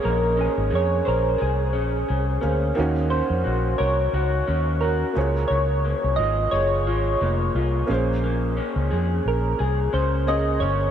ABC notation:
X:1
M:4/4
L:1/16
Q:"Swing 16ths" 1/4=88
K:Bbm
V:1 name="Synth keys"
B2 A2 d2 B2 A6 z2 | z2 c4 d6 B4 | d4 e2 d6 z4 | z6 B2 A2 c2 e2 d2 |]
V:2 name="Upright piano"
[B,DAd]12- [B,DAd]2 [B,DAc]2 | [B,DEG]12- [B,DEG]2 [B,FAd]2- | [B,FAd]12- [B,FAd]2 [B,DAc]2- | [B,DAc]12 [B,DAd]4 |]
V:3 name="Clean electric guitar"
[B,DA]2 D2 A2 c2 A2 D2 A2 D2 | E,2 D2 G2 B2 G2 D2 G2 D,2 | D,2 B,2 F2 A2 F2 B,2 F2 B,2 | B,2 D2 A4 A2 D2 A2 D2 |]
V:4 name="Fingered electric bass" clef=bass
B,,,3 A,,, F,,2 B,,,2 C,,2 B,,,2 C,,2 =D,,2 | E,,3 F,, B,,,2 C,,2 D,,2 E,,4 D,,2 | D,,3 C,, A,,,2 G,,,2 A,,,2 F,,,2 C,,2 B,,,2- | B,,,3 D,, F,,2 B,,,2 C,,2 D,,4 =G,,,2 |]